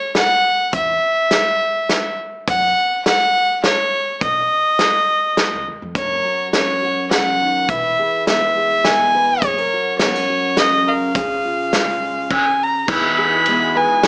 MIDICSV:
0, 0, Header, 1, 8, 480
1, 0, Start_track
1, 0, Key_signature, 6, "major"
1, 0, Tempo, 578592
1, 610, Time_signature, 3, 2, 24, 8
1, 11676, End_track
2, 0, Start_track
2, 0, Title_t, "Fiddle"
2, 0, Program_c, 0, 110
2, 0, Note_on_c, 0, 73, 79
2, 102, Note_off_c, 0, 73, 0
2, 144, Note_on_c, 0, 78, 85
2, 584, Note_off_c, 0, 78, 0
2, 626, Note_on_c, 0, 76, 78
2, 1787, Note_off_c, 0, 76, 0
2, 2062, Note_on_c, 0, 78, 96
2, 2505, Note_off_c, 0, 78, 0
2, 2536, Note_on_c, 0, 78, 88
2, 2982, Note_off_c, 0, 78, 0
2, 3025, Note_on_c, 0, 73, 78
2, 3467, Note_off_c, 0, 73, 0
2, 3510, Note_on_c, 0, 75, 76
2, 4670, Note_off_c, 0, 75, 0
2, 4946, Note_on_c, 0, 73, 76
2, 5388, Note_off_c, 0, 73, 0
2, 5435, Note_on_c, 0, 73, 75
2, 5872, Note_off_c, 0, 73, 0
2, 5905, Note_on_c, 0, 78, 83
2, 6384, Note_on_c, 0, 76, 82
2, 6397, Note_off_c, 0, 78, 0
2, 6860, Note_off_c, 0, 76, 0
2, 6864, Note_on_c, 0, 76, 78
2, 7343, Note_on_c, 0, 80, 92
2, 7356, Note_off_c, 0, 76, 0
2, 7828, Note_on_c, 0, 73, 82
2, 7840, Note_off_c, 0, 80, 0
2, 8280, Note_off_c, 0, 73, 0
2, 8285, Note_on_c, 0, 73, 79
2, 8782, Note_on_c, 0, 75, 79
2, 8795, Note_off_c, 0, 73, 0
2, 9024, Note_on_c, 0, 77, 66
2, 9037, Note_off_c, 0, 75, 0
2, 10218, Note_off_c, 0, 77, 0
2, 10240, Note_on_c, 0, 80, 68
2, 10482, Note_on_c, 0, 82, 60
2, 10494, Note_off_c, 0, 80, 0
2, 10706, Note_off_c, 0, 82, 0
2, 10720, Note_on_c, 0, 83, 81
2, 11425, Note_on_c, 0, 80, 73
2, 11437, Note_off_c, 0, 83, 0
2, 11676, Note_off_c, 0, 80, 0
2, 11676, End_track
3, 0, Start_track
3, 0, Title_t, "Ukulele"
3, 0, Program_c, 1, 24
3, 10934, Note_on_c, 1, 68, 56
3, 11410, Note_on_c, 1, 71, 71
3, 11676, Note_off_c, 1, 68, 0
3, 11676, Note_off_c, 1, 71, 0
3, 11676, End_track
4, 0, Start_track
4, 0, Title_t, "Steel-string acoustic guitar"
4, 0, Program_c, 2, 25
4, 4935, Note_on_c, 2, 42, 58
4, 4940, Note_on_c, 2, 70, 54
4, 5185, Note_on_c, 2, 66, 46
4, 5416, Note_on_c, 2, 54, 53
4, 5426, Note_on_c, 2, 61, 46
4, 5661, Note_off_c, 2, 66, 0
4, 5675, Note_on_c, 2, 66, 50
4, 5902, Note_on_c, 2, 49, 55
4, 6139, Note_off_c, 2, 49, 0
4, 6153, Note_on_c, 2, 51, 60
4, 6349, Note_off_c, 2, 70, 0
4, 6352, Note_off_c, 2, 61, 0
4, 6357, Note_off_c, 2, 66, 0
4, 6375, Note_off_c, 2, 42, 0
4, 6376, Note_off_c, 2, 54, 0
4, 6384, Note_off_c, 2, 51, 0
4, 6388, Note_on_c, 2, 52, 62
4, 6399, Note_on_c, 2, 71, 56
4, 6631, Note_on_c, 2, 68, 49
4, 6865, Note_on_c, 2, 56, 55
4, 6870, Note_on_c, 2, 59, 44
4, 7103, Note_off_c, 2, 68, 0
4, 7115, Note_on_c, 2, 68, 53
4, 7348, Note_on_c, 2, 47, 54
4, 7579, Note_off_c, 2, 71, 0
4, 7589, Note_on_c, 2, 71, 64
4, 7791, Note_off_c, 2, 56, 0
4, 7792, Note_off_c, 2, 47, 0
4, 7792, Note_off_c, 2, 52, 0
4, 7793, Note_off_c, 2, 71, 0
4, 7796, Note_off_c, 2, 68, 0
4, 7819, Note_on_c, 2, 42, 63
4, 7822, Note_off_c, 2, 59, 0
4, 7823, Note_on_c, 2, 68, 58
4, 7950, Note_off_c, 2, 68, 0
4, 7950, Note_on_c, 2, 70, 48
4, 8078, Note_on_c, 2, 66, 49
4, 8298, Note_on_c, 2, 54, 49
4, 8302, Note_on_c, 2, 59, 45
4, 8424, Note_off_c, 2, 59, 0
4, 8424, Note_on_c, 2, 61, 46
4, 8531, Note_off_c, 2, 66, 0
4, 8541, Note_on_c, 2, 66, 50
4, 8778, Note_on_c, 2, 49, 57
4, 9009, Note_off_c, 2, 70, 0
4, 9019, Note_on_c, 2, 70, 63
4, 9228, Note_off_c, 2, 66, 0
4, 9228, Note_off_c, 2, 70, 0
4, 9241, Note_off_c, 2, 49, 0
4, 9251, Note_on_c, 2, 49, 65
4, 9256, Note_off_c, 2, 42, 0
4, 9256, Note_off_c, 2, 54, 0
4, 9259, Note_off_c, 2, 61, 0
4, 9259, Note_on_c, 2, 68, 58
4, 9498, Note_on_c, 2, 65, 53
4, 9729, Note_on_c, 2, 56, 50
4, 9738, Note_on_c, 2, 61, 43
4, 9965, Note_off_c, 2, 65, 0
4, 9975, Note_on_c, 2, 65, 46
4, 10182, Note_off_c, 2, 56, 0
4, 10185, Note_off_c, 2, 65, 0
4, 10186, Note_off_c, 2, 61, 0
4, 10691, Note_off_c, 2, 49, 0
4, 10694, Note_on_c, 2, 52, 68
4, 11175, Note_on_c, 2, 56, 55
4, 11181, Note_on_c, 2, 59, 52
4, 11652, Note_off_c, 2, 68, 0
4, 11653, Note_off_c, 2, 56, 0
4, 11676, Note_off_c, 2, 52, 0
4, 11676, Note_off_c, 2, 59, 0
4, 11676, End_track
5, 0, Start_track
5, 0, Title_t, "Twelve-string acoustic guitar"
5, 0, Program_c, 3, 25
5, 10693, Note_on_c, 3, 52, 69
5, 10697, Note_on_c, 3, 59, 68
5, 10698, Note_on_c, 3, 63, 66
5, 10705, Note_on_c, 3, 68, 75
5, 11160, Note_off_c, 3, 52, 0
5, 11167, Note_off_c, 3, 59, 0
5, 11170, Note_on_c, 3, 52, 51
5, 11171, Note_off_c, 3, 63, 0
5, 11177, Note_on_c, 3, 59, 51
5, 11181, Note_on_c, 3, 63, 51
5, 11187, Note_off_c, 3, 68, 0
5, 11190, Note_on_c, 3, 68, 51
5, 11632, Note_off_c, 3, 52, 0
5, 11636, Note_off_c, 3, 59, 0
5, 11642, Note_on_c, 3, 52, 51
5, 11643, Note_off_c, 3, 63, 0
5, 11646, Note_on_c, 3, 59, 57
5, 11656, Note_off_c, 3, 68, 0
5, 11676, Note_off_c, 3, 52, 0
5, 11676, Note_off_c, 3, 59, 0
5, 11676, End_track
6, 0, Start_track
6, 0, Title_t, "Accordion"
6, 0, Program_c, 4, 21
6, 10684, Note_on_c, 4, 59, 61
6, 10685, Note_on_c, 4, 47, 60
6, 10685, Note_on_c, 4, 52, 59
6, 10685, Note_on_c, 4, 68, 72
6, 10690, Note_on_c, 4, 56, 60
6, 11676, Note_off_c, 4, 47, 0
6, 11676, Note_off_c, 4, 52, 0
6, 11676, Note_off_c, 4, 56, 0
6, 11676, Note_off_c, 4, 59, 0
6, 11676, Note_off_c, 4, 68, 0
6, 11676, End_track
7, 0, Start_track
7, 0, Title_t, "Upright bass"
7, 0, Program_c, 5, 32
7, 607, Note_on_c, 5, 40, 67
7, 803, Note_off_c, 5, 40, 0
7, 2056, Note_on_c, 5, 42, 70
7, 2250, Note_off_c, 5, 42, 0
7, 3496, Note_on_c, 5, 35, 70
7, 3690, Note_off_c, 5, 35, 0
7, 4587, Note_on_c, 5, 37, 62
7, 4690, Note_off_c, 5, 37, 0
7, 4712, Note_on_c, 5, 39, 55
7, 4813, Note_off_c, 5, 39, 0
7, 4830, Note_on_c, 5, 41, 69
7, 4931, Note_off_c, 5, 41, 0
7, 4937, Note_on_c, 5, 30, 71
7, 5131, Note_off_c, 5, 30, 0
7, 6382, Note_on_c, 5, 28, 77
7, 6574, Note_off_c, 5, 28, 0
7, 7818, Note_on_c, 5, 30, 76
7, 8011, Note_off_c, 5, 30, 0
7, 9253, Note_on_c, 5, 37, 63
7, 9448, Note_off_c, 5, 37, 0
7, 10690, Note_on_c, 5, 40, 75
7, 11468, Note_off_c, 5, 40, 0
7, 11676, End_track
8, 0, Start_track
8, 0, Title_t, "Drums"
8, 124, Note_on_c, 9, 38, 69
8, 124, Note_on_c, 9, 42, 43
8, 207, Note_off_c, 9, 38, 0
8, 207, Note_off_c, 9, 42, 0
8, 603, Note_on_c, 9, 42, 51
8, 606, Note_on_c, 9, 36, 95
8, 686, Note_off_c, 9, 42, 0
8, 689, Note_off_c, 9, 36, 0
8, 1086, Note_on_c, 9, 38, 74
8, 1086, Note_on_c, 9, 42, 52
8, 1169, Note_off_c, 9, 38, 0
8, 1169, Note_off_c, 9, 42, 0
8, 1571, Note_on_c, 9, 38, 58
8, 1571, Note_on_c, 9, 42, 48
8, 1654, Note_off_c, 9, 38, 0
8, 1654, Note_off_c, 9, 42, 0
8, 2054, Note_on_c, 9, 36, 97
8, 2056, Note_on_c, 9, 42, 52
8, 2137, Note_off_c, 9, 36, 0
8, 2139, Note_off_c, 9, 42, 0
8, 2538, Note_on_c, 9, 38, 69
8, 2538, Note_on_c, 9, 42, 58
8, 2621, Note_off_c, 9, 38, 0
8, 2621, Note_off_c, 9, 42, 0
8, 3017, Note_on_c, 9, 38, 63
8, 3017, Note_on_c, 9, 42, 50
8, 3099, Note_off_c, 9, 38, 0
8, 3099, Note_off_c, 9, 42, 0
8, 3495, Note_on_c, 9, 36, 89
8, 3497, Note_on_c, 9, 42, 45
8, 3578, Note_off_c, 9, 36, 0
8, 3580, Note_off_c, 9, 42, 0
8, 3973, Note_on_c, 9, 38, 65
8, 3973, Note_on_c, 9, 42, 52
8, 4056, Note_off_c, 9, 38, 0
8, 4056, Note_off_c, 9, 42, 0
8, 4457, Note_on_c, 9, 38, 63
8, 4457, Note_on_c, 9, 42, 45
8, 4540, Note_off_c, 9, 38, 0
8, 4540, Note_off_c, 9, 42, 0
8, 4938, Note_on_c, 9, 36, 90
8, 4940, Note_on_c, 9, 42, 48
8, 5021, Note_off_c, 9, 36, 0
8, 5023, Note_off_c, 9, 42, 0
8, 5419, Note_on_c, 9, 38, 66
8, 5419, Note_on_c, 9, 42, 52
8, 5502, Note_off_c, 9, 38, 0
8, 5502, Note_off_c, 9, 42, 0
8, 5900, Note_on_c, 9, 38, 66
8, 5900, Note_on_c, 9, 42, 54
8, 5983, Note_off_c, 9, 38, 0
8, 5983, Note_off_c, 9, 42, 0
8, 6377, Note_on_c, 9, 42, 50
8, 6378, Note_on_c, 9, 36, 97
8, 6460, Note_off_c, 9, 42, 0
8, 6461, Note_off_c, 9, 36, 0
8, 6862, Note_on_c, 9, 38, 67
8, 6862, Note_on_c, 9, 42, 51
8, 6945, Note_off_c, 9, 38, 0
8, 6945, Note_off_c, 9, 42, 0
8, 7338, Note_on_c, 9, 38, 68
8, 7338, Note_on_c, 9, 42, 43
8, 7421, Note_off_c, 9, 38, 0
8, 7421, Note_off_c, 9, 42, 0
8, 7814, Note_on_c, 9, 36, 84
8, 7816, Note_on_c, 9, 42, 50
8, 7897, Note_off_c, 9, 36, 0
8, 7899, Note_off_c, 9, 42, 0
8, 8291, Note_on_c, 9, 38, 80
8, 8291, Note_on_c, 9, 42, 51
8, 8374, Note_off_c, 9, 38, 0
8, 8374, Note_off_c, 9, 42, 0
8, 8768, Note_on_c, 9, 38, 68
8, 8768, Note_on_c, 9, 42, 53
8, 8851, Note_off_c, 9, 38, 0
8, 8851, Note_off_c, 9, 42, 0
8, 9250, Note_on_c, 9, 42, 54
8, 9251, Note_on_c, 9, 36, 91
8, 9333, Note_off_c, 9, 36, 0
8, 9333, Note_off_c, 9, 42, 0
8, 9730, Note_on_c, 9, 38, 77
8, 9730, Note_on_c, 9, 42, 53
8, 9813, Note_off_c, 9, 38, 0
8, 9813, Note_off_c, 9, 42, 0
8, 10209, Note_on_c, 9, 36, 80
8, 10210, Note_on_c, 9, 49, 70
8, 10292, Note_off_c, 9, 36, 0
8, 10293, Note_off_c, 9, 49, 0
8, 10687, Note_on_c, 9, 36, 101
8, 10688, Note_on_c, 9, 49, 88
8, 10770, Note_off_c, 9, 36, 0
8, 10771, Note_off_c, 9, 49, 0
8, 11163, Note_on_c, 9, 51, 54
8, 11246, Note_off_c, 9, 51, 0
8, 11642, Note_on_c, 9, 38, 76
8, 11642, Note_on_c, 9, 51, 53
8, 11676, Note_off_c, 9, 38, 0
8, 11676, Note_off_c, 9, 51, 0
8, 11676, End_track
0, 0, End_of_file